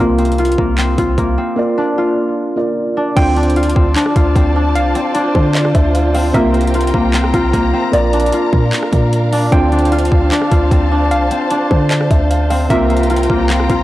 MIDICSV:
0, 0, Header, 1, 7, 480
1, 0, Start_track
1, 0, Key_signature, -1, "minor"
1, 0, Tempo, 397351
1, 1903, Time_signature, 4, 2, 24, 8
1, 16710, End_track
2, 0, Start_track
2, 0, Title_t, "Synth pluck"
2, 0, Program_c, 0, 84
2, 3823, Note_on_c, 0, 79, 106
2, 5694, Note_off_c, 0, 79, 0
2, 5743, Note_on_c, 0, 77, 101
2, 6655, Note_off_c, 0, 77, 0
2, 7663, Note_on_c, 0, 76, 99
2, 9535, Note_off_c, 0, 76, 0
2, 9583, Note_on_c, 0, 74, 107
2, 10495, Note_off_c, 0, 74, 0
2, 11502, Note_on_c, 0, 79, 103
2, 13374, Note_off_c, 0, 79, 0
2, 13423, Note_on_c, 0, 77, 99
2, 14335, Note_off_c, 0, 77, 0
2, 15344, Note_on_c, 0, 76, 99
2, 16710, Note_off_c, 0, 76, 0
2, 16710, End_track
3, 0, Start_track
3, 0, Title_t, "String section"
3, 0, Program_c, 1, 48
3, 3824, Note_on_c, 1, 65, 86
3, 3824, Note_on_c, 1, 72, 80
3, 3824, Note_on_c, 1, 74, 78
3, 3824, Note_on_c, 1, 81, 93
3, 7625, Note_off_c, 1, 74, 0
3, 7625, Note_off_c, 1, 81, 0
3, 7663, Note_on_c, 1, 79, 78
3, 7663, Note_on_c, 1, 82, 97
3, 9535, Note_off_c, 1, 65, 0
3, 9535, Note_off_c, 1, 72, 0
3, 9564, Note_off_c, 1, 79, 0
3, 9583, Note_on_c, 1, 62, 84
3, 9583, Note_on_c, 1, 70, 80
3, 9583, Note_on_c, 1, 77, 79
3, 11465, Note_off_c, 1, 82, 0
3, 11484, Note_off_c, 1, 70, 0
3, 11502, Note_on_c, 1, 72, 79
3, 11502, Note_on_c, 1, 81, 96
3, 15294, Note_off_c, 1, 62, 0
3, 15294, Note_off_c, 1, 77, 0
3, 15304, Note_off_c, 1, 81, 0
3, 15343, Note_on_c, 1, 65, 88
3, 15343, Note_on_c, 1, 79, 77
3, 15343, Note_on_c, 1, 82, 96
3, 16710, Note_off_c, 1, 65, 0
3, 16710, Note_off_c, 1, 72, 0
3, 16710, Note_off_c, 1, 79, 0
3, 16710, Note_off_c, 1, 82, 0
3, 16710, End_track
4, 0, Start_track
4, 0, Title_t, "Felt piano"
4, 0, Program_c, 2, 0
4, 0, Control_c, 2, 64, 127
4, 0, Note_on_c, 2, 48, 75
4, 0, Note_on_c, 2, 58, 74
4, 0, Note_on_c, 2, 65, 88
4, 1, Control_c, 2, 64, 0
4, 203, Control_c, 2, 64, 127
4, 1856, Note_off_c, 2, 48, 0
4, 1865, Note_off_c, 2, 58, 0
4, 1873, Note_off_c, 2, 65, 0
4, 1883, Note_on_c, 2, 58, 81
4, 1901, Note_on_c, 2, 65, 70
4, 1916, Control_c, 2, 64, 0
4, 1918, Note_on_c, 2, 74, 85
4, 2118, Control_c, 2, 64, 127
4, 3069, Note_off_c, 2, 58, 0
4, 3078, Note_off_c, 2, 65, 0
4, 3087, Note_off_c, 2, 74, 0
4, 3092, Note_on_c, 2, 58, 55
4, 3101, Note_on_c, 2, 65, 53
4, 3109, Note_on_c, 2, 74, 66
4, 3809, Note_on_c, 2, 50, 79
4, 3817, Note_off_c, 2, 58, 0
4, 3822, Note_off_c, 2, 65, 0
4, 3826, Note_off_c, 2, 74, 0
4, 3826, Note_on_c, 2, 60, 76
4, 3838, Control_c, 2, 64, 0
4, 3843, Note_on_c, 2, 65, 86
4, 4074, Control_c, 2, 64, 127
4, 6462, Note_on_c, 2, 72, 77
4, 6686, Note_off_c, 2, 72, 0
4, 6703, Note_on_c, 2, 74, 76
4, 6926, Note_off_c, 2, 74, 0
4, 6943, Note_on_c, 2, 76, 74
4, 7166, Note_off_c, 2, 76, 0
4, 7184, Note_on_c, 2, 77, 70
4, 7403, Note_off_c, 2, 77, 0
4, 7421, Note_on_c, 2, 77, 81
4, 7608, Note_off_c, 2, 50, 0
4, 7616, Note_off_c, 2, 60, 0
4, 7625, Note_off_c, 2, 65, 0
4, 7645, Note_off_c, 2, 77, 0
4, 7645, Note_on_c, 2, 48, 80
4, 7662, Note_on_c, 2, 58, 75
4, 7677, Control_c, 2, 64, 0
4, 7680, Note_on_c, 2, 65, 88
4, 7906, Control_c, 2, 64, 127
4, 9536, Note_off_c, 2, 48, 0
4, 9544, Note_off_c, 2, 58, 0
4, 9553, Note_off_c, 2, 65, 0
4, 9564, Note_on_c, 2, 58, 84
4, 9581, Note_on_c, 2, 65, 72
4, 9598, Note_on_c, 2, 74, 91
4, 9600, Control_c, 2, 64, 0
4, 9787, Control_c, 2, 64, 127
4, 10749, Note_off_c, 2, 58, 0
4, 10758, Note_off_c, 2, 65, 0
4, 10767, Note_off_c, 2, 74, 0
4, 10772, Note_on_c, 2, 58, 55
4, 10781, Note_on_c, 2, 65, 57
4, 10789, Note_on_c, 2, 74, 69
4, 11488, Note_on_c, 2, 50, 83
4, 11497, Note_off_c, 2, 58, 0
4, 11502, Note_off_c, 2, 65, 0
4, 11505, Note_on_c, 2, 60, 77
4, 11506, Note_off_c, 2, 74, 0
4, 11519, Control_c, 2, 64, 0
4, 11523, Note_on_c, 2, 65, 90
4, 11703, Control_c, 2, 64, 127
4, 14143, Note_on_c, 2, 72, 78
4, 14366, Note_off_c, 2, 72, 0
4, 14383, Note_on_c, 2, 74, 74
4, 14606, Note_off_c, 2, 74, 0
4, 14624, Note_on_c, 2, 76, 71
4, 14847, Note_off_c, 2, 76, 0
4, 14864, Note_on_c, 2, 77, 70
4, 15083, Note_off_c, 2, 77, 0
4, 15101, Note_on_c, 2, 77, 80
4, 15287, Note_off_c, 2, 50, 0
4, 15296, Note_off_c, 2, 60, 0
4, 15305, Note_off_c, 2, 65, 0
4, 15325, Note_off_c, 2, 77, 0
4, 15325, Note_on_c, 2, 48, 74
4, 15343, Note_on_c, 2, 58, 76
4, 15358, Control_c, 2, 64, 0
4, 15360, Note_on_c, 2, 65, 90
4, 15566, Control_c, 2, 64, 127
4, 16710, Note_off_c, 2, 48, 0
4, 16710, Note_off_c, 2, 58, 0
4, 16710, Note_off_c, 2, 65, 0
4, 16710, End_track
5, 0, Start_track
5, 0, Title_t, "Harp"
5, 0, Program_c, 3, 46
5, 0, Note_on_c, 3, 58, 96
5, 0, Note_on_c, 3, 60, 86
5, 0, Note_on_c, 3, 62, 86
5, 0, Note_on_c, 3, 65, 85
5, 215, Note_off_c, 3, 60, 0
5, 220, Note_on_c, 3, 60, 78
5, 395, Note_off_c, 3, 65, 0
5, 468, Note_on_c, 3, 65, 91
5, 697, Note_off_c, 3, 58, 0
5, 702, Note_on_c, 3, 58, 75
5, 938, Note_off_c, 3, 60, 0
5, 942, Note_on_c, 3, 60, 99
5, 1182, Note_off_c, 3, 65, 0
5, 1187, Note_on_c, 3, 65, 81
5, 1419, Note_off_c, 3, 58, 0
5, 1424, Note_on_c, 3, 58, 83
5, 1657, Note_off_c, 3, 60, 0
5, 1662, Note_on_c, 3, 60, 81
5, 1920, Note_off_c, 3, 62, 0
5, 2144, Note_on_c, 3, 62, 80
5, 2385, Note_off_c, 3, 65, 0
5, 2390, Note_on_c, 3, 65, 89
5, 3580, Note_off_c, 3, 62, 0
5, 3585, Note_on_c, 3, 62, 76
5, 3815, Note_off_c, 3, 60, 0
5, 3820, Note_on_c, 3, 60, 101
5, 4062, Note_off_c, 3, 62, 0
5, 4066, Note_on_c, 3, 62, 83
5, 4298, Note_off_c, 3, 65, 0
5, 4303, Note_on_c, 3, 65, 91
5, 4532, Note_off_c, 3, 60, 0
5, 4537, Note_on_c, 3, 60, 82
5, 4777, Note_off_c, 3, 62, 0
5, 4782, Note_on_c, 3, 62, 99
5, 5023, Note_off_c, 3, 65, 0
5, 5028, Note_on_c, 3, 65, 86
5, 5261, Note_off_c, 3, 60, 0
5, 5266, Note_on_c, 3, 60, 83
5, 5308, Note_off_c, 3, 58, 0
5, 5502, Note_off_c, 3, 62, 0
5, 5506, Note_on_c, 3, 62, 93
5, 5978, Note_off_c, 3, 60, 0
5, 5983, Note_on_c, 3, 60, 82
5, 6215, Note_off_c, 3, 62, 0
5, 6220, Note_on_c, 3, 62, 93
5, 7421, Note_off_c, 3, 60, 0
5, 7426, Note_on_c, 3, 60, 85
5, 7663, Note_on_c, 3, 58, 98
5, 7894, Note_off_c, 3, 60, 0
5, 7899, Note_on_c, 3, 60, 84
5, 8075, Note_off_c, 3, 65, 0
5, 8147, Note_on_c, 3, 65, 94
5, 8377, Note_off_c, 3, 58, 0
5, 8382, Note_on_c, 3, 58, 81
5, 8617, Note_off_c, 3, 60, 0
5, 8622, Note_on_c, 3, 60, 98
5, 8862, Note_off_c, 3, 65, 0
5, 8867, Note_on_c, 3, 65, 87
5, 9099, Note_off_c, 3, 58, 0
5, 9104, Note_on_c, 3, 58, 85
5, 9338, Note_off_c, 3, 60, 0
5, 9343, Note_on_c, 3, 60, 88
5, 9601, Note_off_c, 3, 62, 0
5, 9824, Note_on_c, 3, 62, 86
5, 10065, Note_off_c, 3, 65, 0
5, 10070, Note_on_c, 3, 65, 88
5, 11260, Note_off_c, 3, 62, 0
5, 11265, Note_on_c, 3, 62, 77
5, 11495, Note_off_c, 3, 60, 0
5, 11500, Note_on_c, 3, 60, 100
5, 11741, Note_off_c, 3, 62, 0
5, 11746, Note_on_c, 3, 62, 81
5, 11978, Note_off_c, 3, 65, 0
5, 11983, Note_on_c, 3, 65, 97
5, 12212, Note_off_c, 3, 60, 0
5, 12217, Note_on_c, 3, 60, 83
5, 12457, Note_off_c, 3, 62, 0
5, 12462, Note_on_c, 3, 62, 96
5, 12703, Note_off_c, 3, 65, 0
5, 12708, Note_on_c, 3, 65, 90
5, 12941, Note_off_c, 3, 60, 0
5, 12946, Note_on_c, 3, 60, 81
5, 12988, Note_off_c, 3, 58, 0
5, 13181, Note_off_c, 3, 62, 0
5, 13186, Note_on_c, 3, 62, 97
5, 13658, Note_off_c, 3, 60, 0
5, 13662, Note_on_c, 3, 60, 80
5, 13894, Note_off_c, 3, 62, 0
5, 13899, Note_on_c, 3, 62, 90
5, 15101, Note_off_c, 3, 60, 0
5, 15106, Note_on_c, 3, 60, 89
5, 15343, Note_on_c, 3, 58, 99
5, 15574, Note_off_c, 3, 60, 0
5, 15579, Note_on_c, 3, 60, 79
5, 15755, Note_off_c, 3, 65, 0
5, 15827, Note_on_c, 3, 65, 94
5, 16058, Note_off_c, 3, 58, 0
5, 16062, Note_on_c, 3, 58, 77
5, 16297, Note_off_c, 3, 60, 0
5, 16302, Note_on_c, 3, 60, 100
5, 16542, Note_off_c, 3, 65, 0
5, 16547, Note_on_c, 3, 65, 88
5, 16710, Note_off_c, 3, 58, 0
5, 16710, Note_off_c, 3, 60, 0
5, 16710, Note_off_c, 3, 62, 0
5, 16710, Note_off_c, 3, 65, 0
5, 16710, End_track
6, 0, Start_track
6, 0, Title_t, "808-style bass"
6, 0, Program_c, 4, 38
6, 0, Note_on_c, 4, 36, 113
6, 674, Note_off_c, 4, 36, 0
6, 703, Note_on_c, 4, 36, 103
6, 1164, Note_off_c, 4, 36, 0
6, 1184, Note_on_c, 4, 36, 105
6, 1414, Note_off_c, 4, 36, 0
6, 1422, Note_on_c, 4, 36, 109
6, 1653, Note_off_c, 4, 36, 0
6, 3823, Note_on_c, 4, 38, 110
6, 4514, Note_off_c, 4, 38, 0
6, 4543, Note_on_c, 4, 38, 104
6, 4773, Note_off_c, 4, 38, 0
6, 5024, Note_on_c, 4, 38, 105
6, 5254, Note_off_c, 4, 38, 0
6, 5262, Note_on_c, 4, 38, 109
6, 5743, Note_on_c, 4, 36, 105
6, 5761, Note_off_c, 4, 38, 0
6, 5971, Note_off_c, 4, 36, 0
6, 6463, Note_on_c, 4, 50, 105
6, 6924, Note_off_c, 4, 50, 0
6, 6944, Note_on_c, 4, 38, 102
6, 7635, Note_off_c, 4, 38, 0
6, 7662, Note_on_c, 4, 36, 117
6, 8354, Note_off_c, 4, 36, 0
6, 8382, Note_on_c, 4, 36, 103
6, 8843, Note_off_c, 4, 36, 0
6, 8863, Note_on_c, 4, 36, 105
6, 9094, Note_off_c, 4, 36, 0
6, 9102, Note_on_c, 4, 36, 104
6, 9333, Note_off_c, 4, 36, 0
6, 9583, Note_on_c, 4, 34, 116
6, 10044, Note_off_c, 4, 34, 0
6, 10302, Note_on_c, 4, 46, 105
6, 10533, Note_off_c, 4, 46, 0
6, 10784, Note_on_c, 4, 46, 102
6, 11475, Note_off_c, 4, 46, 0
6, 11503, Note_on_c, 4, 38, 115
6, 12194, Note_off_c, 4, 38, 0
6, 12222, Note_on_c, 4, 38, 109
6, 12453, Note_off_c, 4, 38, 0
6, 12704, Note_on_c, 4, 38, 108
6, 12934, Note_off_c, 4, 38, 0
6, 12942, Note_on_c, 4, 38, 106
6, 13423, Note_on_c, 4, 36, 98
6, 13441, Note_off_c, 4, 38, 0
6, 13651, Note_off_c, 4, 36, 0
6, 14142, Note_on_c, 4, 50, 102
6, 14604, Note_off_c, 4, 50, 0
6, 14624, Note_on_c, 4, 38, 106
6, 15314, Note_off_c, 4, 38, 0
6, 15343, Note_on_c, 4, 36, 114
6, 16034, Note_off_c, 4, 36, 0
6, 16062, Note_on_c, 4, 36, 104
6, 16523, Note_off_c, 4, 36, 0
6, 16543, Note_on_c, 4, 36, 104
6, 16710, Note_off_c, 4, 36, 0
6, 16710, End_track
7, 0, Start_track
7, 0, Title_t, "Drums"
7, 223, Note_on_c, 9, 42, 48
7, 303, Note_off_c, 9, 42, 0
7, 303, Note_on_c, 9, 42, 56
7, 383, Note_off_c, 9, 42, 0
7, 383, Note_on_c, 9, 42, 63
7, 463, Note_off_c, 9, 42, 0
7, 463, Note_on_c, 9, 42, 66
7, 543, Note_off_c, 9, 42, 0
7, 543, Note_on_c, 9, 42, 76
7, 623, Note_off_c, 9, 42, 0
7, 623, Note_on_c, 9, 42, 80
7, 703, Note_on_c, 9, 36, 96
7, 744, Note_off_c, 9, 42, 0
7, 824, Note_off_c, 9, 36, 0
7, 943, Note_on_c, 9, 39, 113
7, 947, Note_on_c, 9, 42, 89
7, 1064, Note_off_c, 9, 39, 0
7, 1068, Note_off_c, 9, 42, 0
7, 1184, Note_on_c, 9, 36, 94
7, 1184, Note_on_c, 9, 42, 74
7, 1305, Note_off_c, 9, 36, 0
7, 1305, Note_off_c, 9, 42, 0
7, 1422, Note_on_c, 9, 36, 98
7, 1426, Note_on_c, 9, 42, 80
7, 1543, Note_off_c, 9, 36, 0
7, 1547, Note_off_c, 9, 42, 0
7, 3823, Note_on_c, 9, 36, 124
7, 3823, Note_on_c, 9, 49, 106
7, 3825, Note_on_c, 9, 42, 85
7, 3944, Note_off_c, 9, 36, 0
7, 3944, Note_off_c, 9, 49, 0
7, 3945, Note_off_c, 9, 42, 0
7, 4063, Note_on_c, 9, 42, 50
7, 4143, Note_off_c, 9, 42, 0
7, 4143, Note_on_c, 9, 42, 57
7, 4223, Note_off_c, 9, 42, 0
7, 4223, Note_on_c, 9, 42, 68
7, 4303, Note_off_c, 9, 42, 0
7, 4303, Note_on_c, 9, 42, 71
7, 4383, Note_off_c, 9, 42, 0
7, 4383, Note_on_c, 9, 42, 76
7, 4463, Note_off_c, 9, 42, 0
7, 4463, Note_on_c, 9, 42, 85
7, 4543, Note_on_c, 9, 36, 100
7, 4584, Note_off_c, 9, 42, 0
7, 4663, Note_off_c, 9, 36, 0
7, 4783, Note_on_c, 9, 39, 122
7, 4787, Note_on_c, 9, 42, 93
7, 4903, Note_on_c, 9, 37, 97
7, 4904, Note_off_c, 9, 39, 0
7, 4908, Note_off_c, 9, 42, 0
7, 5024, Note_off_c, 9, 37, 0
7, 5024, Note_on_c, 9, 36, 98
7, 5024, Note_on_c, 9, 42, 75
7, 5144, Note_off_c, 9, 42, 0
7, 5145, Note_off_c, 9, 36, 0
7, 5262, Note_on_c, 9, 36, 99
7, 5266, Note_on_c, 9, 42, 86
7, 5383, Note_off_c, 9, 36, 0
7, 5387, Note_off_c, 9, 42, 0
7, 5744, Note_on_c, 9, 42, 87
7, 5865, Note_off_c, 9, 42, 0
7, 5983, Note_on_c, 9, 42, 81
7, 6104, Note_off_c, 9, 42, 0
7, 6217, Note_on_c, 9, 42, 80
7, 6338, Note_off_c, 9, 42, 0
7, 6462, Note_on_c, 9, 36, 95
7, 6583, Note_off_c, 9, 36, 0
7, 6703, Note_on_c, 9, 39, 120
7, 6707, Note_on_c, 9, 42, 92
7, 6823, Note_off_c, 9, 39, 0
7, 6824, Note_on_c, 9, 37, 98
7, 6827, Note_off_c, 9, 42, 0
7, 6944, Note_off_c, 9, 37, 0
7, 6944, Note_on_c, 9, 36, 95
7, 6944, Note_on_c, 9, 42, 83
7, 7064, Note_off_c, 9, 42, 0
7, 7065, Note_off_c, 9, 36, 0
7, 7186, Note_on_c, 9, 42, 85
7, 7307, Note_off_c, 9, 42, 0
7, 7425, Note_on_c, 9, 46, 80
7, 7546, Note_off_c, 9, 46, 0
7, 7663, Note_on_c, 9, 36, 123
7, 7664, Note_on_c, 9, 42, 87
7, 7784, Note_off_c, 9, 36, 0
7, 7785, Note_off_c, 9, 42, 0
7, 7903, Note_on_c, 9, 42, 50
7, 7983, Note_off_c, 9, 42, 0
7, 7983, Note_on_c, 9, 42, 58
7, 8063, Note_off_c, 9, 42, 0
7, 8063, Note_on_c, 9, 42, 67
7, 8143, Note_off_c, 9, 42, 0
7, 8143, Note_on_c, 9, 42, 71
7, 8223, Note_off_c, 9, 42, 0
7, 8223, Note_on_c, 9, 42, 81
7, 8303, Note_off_c, 9, 42, 0
7, 8303, Note_on_c, 9, 42, 82
7, 8382, Note_on_c, 9, 36, 97
7, 8424, Note_off_c, 9, 42, 0
7, 8503, Note_off_c, 9, 36, 0
7, 8622, Note_on_c, 9, 39, 120
7, 8626, Note_on_c, 9, 42, 95
7, 8743, Note_off_c, 9, 39, 0
7, 8743, Note_on_c, 9, 37, 98
7, 8747, Note_off_c, 9, 42, 0
7, 8863, Note_on_c, 9, 36, 100
7, 8863, Note_on_c, 9, 42, 74
7, 8864, Note_off_c, 9, 37, 0
7, 8984, Note_off_c, 9, 36, 0
7, 8984, Note_off_c, 9, 42, 0
7, 9102, Note_on_c, 9, 36, 101
7, 9106, Note_on_c, 9, 42, 85
7, 9222, Note_off_c, 9, 36, 0
7, 9227, Note_off_c, 9, 42, 0
7, 9584, Note_on_c, 9, 42, 84
7, 9705, Note_off_c, 9, 42, 0
7, 9823, Note_on_c, 9, 42, 69
7, 9903, Note_off_c, 9, 42, 0
7, 9903, Note_on_c, 9, 42, 69
7, 9983, Note_off_c, 9, 42, 0
7, 9983, Note_on_c, 9, 42, 71
7, 10057, Note_off_c, 9, 42, 0
7, 10057, Note_on_c, 9, 42, 79
7, 10178, Note_off_c, 9, 42, 0
7, 10303, Note_on_c, 9, 36, 96
7, 10423, Note_off_c, 9, 36, 0
7, 10543, Note_on_c, 9, 39, 118
7, 10547, Note_on_c, 9, 42, 90
7, 10663, Note_off_c, 9, 39, 0
7, 10664, Note_on_c, 9, 37, 97
7, 10667, Note_off_c, 9, 42, 0
7, 10784, Note_on_c, 9, 36, 98
7, 10784, Note_on_c, 9, 42, 82
7, 10785, Note_off_c, 9, 37, 0
7, 10905, Note_off_c, 9, 36, 0
7, 10905, Note_off_c, 9, 42, 0
7, 11027, Note_on_c, 9, 42, 81
7, 11147, Note_off_c, 9, 42, 0
7, 11265, Note_on_c, 9, 46, 77
7, 11386, Note_off_c, 9, 46, 0
7, 11503, Note_on_c, 9, 36, 124
7, 11505, Note_on_c, 9, 42, 88
7, 11624, Note_off_c, 9, 36, 0
7, 11625, Note_off_c, 9, 42, 0
7, 11743, Note_on_c, 9, 42, 51
7, 11823, Note_off_c, 9, 42, 0
7, 11823, Note_on_c, 9, 42, 57
7, 11903, Note_off_c, 9, 42, 0
7, 11903, Note_on_c, 9, 42, 64
7, 11983, Note_off_c, 9, 42, 0
7, 11983, Note_on_c, 9, 42, 71
7, 12063, Note_off_c, 9, 42, 0
7, 12063, Note_on_c, 9, 42, 75
7, 12143, Note_off_c, 9, 42, 0
7, 12143, Note_on_c, 9, 42, 82
7, 12223, Note_on_c, 9, 36, 96
7, 12264, Note_off_c, 9, 42, 0
7, 12343, Note_off_c, 9, 36, 0
7, 12463, Note_on_c, 9, 39, 116
7, 12467, Note_on_c, 9, 42, 96
7, 12583, Note_off_c, 9, 39, 0
7, 12583, Note_on_c, 9, 37, 98
7, 12587, Note_off_c, 9, 42, 0
7, 12703, Note_on_c, 9, 42, 76
7, 12704, Note_off_c, 9, 37, 0
7, 12704, Note_on_c, 9, 36, 93
7, 12824, Note_off_c, 9, 36, 0
7, 12824, Note_off_c, 9, 42, 0
7, 12942, Note_on_c, 9, 36, 101
7, 12946, Note_on_c, 9, 42, 83
7, 13062, Note_off_c, 9, 36, 0
7, 13066, Note_off_c, 9, 42, 0
7, 13424, Note_on_c, 9, 42, 87
7, 13545, Note_off_c, 9, 42, 0
7, 13663, Note_on_c, 9, 42, 81
7, 13783, Note_off_c, 9, 42, 0
7, 13897, Note_on_c, 9, 42, 81
7, 14018, Note_off_c, 9, 42, 0
7, 14142, Note_on_c, 9, 36, 98
7, 14263, Note_off_c, 9, 36, 0
7, 14382, Note_on_c, 9, 39, 118
7, 14386, Note_on_c, 9, 42, 95
7, 14503, Note_off_c, 9, 39, 0
7, 14503, Note_on_c, 9, 37, 96
7, 14507, Note_off_c, 9, 42, 0
7, 14624, Note_off_c, 9, 37, 0
7, 14624, Note_on_c, 9, 36, 96
7, 14624, Note_on_c, 9, 42, 82
7, 14744, Note_off_c, 9, 36, 0
7, 14744, Note_off_c, 9, 42, 0
7, 14866, Note_on_c, 9, 42, 83
7, 14987, Note_off_c, 9, 42, 0
7, 15105, Note_on_c, 9, 46, 81
7, 15226, Note_off_c, 9, 46, 0
7, 15343, Note_on_c, 9, 36, 124
7, 15344, Note_on_c, 9, 42, 89
7, 15463, Note_off_c, 9, 36, 0
7, 15465, Note_off_c, 9, 42, 0
7, 15583, Note_on_c, 9, 42, 48
7, 15663, Note_off_c, 9, 42, 0
7, 15663, Note_on_c, 9, 42, 56
7, 15743, Note_off_c, 9, 42, 0
7, 15743, Note_on_c, 9, 42, 65
7, 15823, Note_off_c, 9, 42, 0
7, 15823, Note_on_c, 9, 42, 71
7, 15903, Note_off_c, 9, 42, 0
7, 15903, Note_on_c, 9, 42, 76
7, 15983, Note_off_c, 9, 42, 0
7, 15983, Note_on_c, 9, 42, 82
7, 16062, Note_on_c, 9, 36, 92
7, 16103, Note_off_c, 9, 42, 0
7, 16183, Note_off_c, 9, 36, 0
7, 16302, Note_on_c, 9, 39, 118
7, 16306, Note_on_c, 9, 42, 96
7, 16423, Note_off_c, 9, 39, 0
7, 16423, Note_on_c, 9, 37, 98
7, 16427, Note_off_c, 9, 42, 0
7, 16543, Note_on_c, 9, 42, 75
7, 16544, Note_off_c, 9, 37, 0
7, 16544, Note_on_c, 9, 36, 97
7, 16664, Note_off_c, 9, 36, 0
7, 16664, Note_off_c, 9, 42, 0
7, 16710, End_track
0, 0, End_of_file